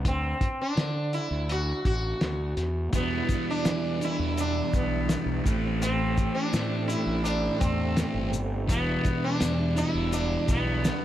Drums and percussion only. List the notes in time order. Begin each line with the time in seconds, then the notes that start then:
0.05 kick, closed hi-hat
0.41 kick, closed hi-hat
0.77 snare, closed hi-hat
1.13 closed hi-hat
1.49 closed hi-hat
1.85 kick, closed hi-hat
2.21 snare, closed hi-hat
2.57 snare, closed hi-hat
2.93 kick, closed hi-hat, shaker
3.29 kick, closed hi-hat, shaker
3.65 snare, closed hi-hat, shaker
4.01 closed hi-hat, shaker
4.37 closed hi-hat, shaker
4.74 kick, closed hi-hat, shaker
5.09 snare, closed hi-hat, shaker
5.46 kick, closed hi-hat, shaker
5.82 closed hi-hat, shaker
6.18 kick, closed hi-hat, shaker
6.53 snare, closed hi-hat, shaker
6.89 closed hi-hat, shaker
7.25 closed hi-hat, shaker
7.61 kick, closed hi-hat, shaker
7.97 snare, closed hi-hat, shaker
8.33 closed hi-hat, shaker
8.69 kick, closed hi-hat, shaker
9.05 kick, closed hi-hat, shaker
9.40 snare, closed hi-hat, shaker
9.77 closed hi-hat, shaker
10.13 closed hi-hat, shaker
10.48 kick, closed hi-hat, shaker
10.85 snare, closed hi-hat, shaker